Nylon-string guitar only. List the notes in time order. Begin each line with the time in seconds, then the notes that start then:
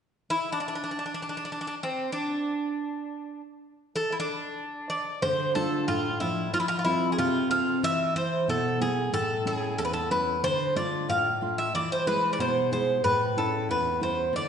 5.23 D3
5.55 A3 D4 F4
5.88 A2
6.20 F3 A3 D4
6.53 F3
6.85 C4 F4 A4
7.18 C3
7.50 C4 F4 A4
7.83 E3
8.16 E4
8.48 B2
8.80 B3 E4 G#4
9.13 A2
9.45 A3 C#4 E4
9.78 E2
10.11 A3 C#4 E4
10.43 D3
10.76 A3 D4 F4
11.09 A2
11.41 A3 D4 F4
11.75 E3
12.07 G#3 E4 G#4
12.39 B2
12.71 G#3 E4 G#4
13.05 A2
13.37 A3 C#4 E4
13.69 E2
14.00 A3 C#4 E4
14.33 D3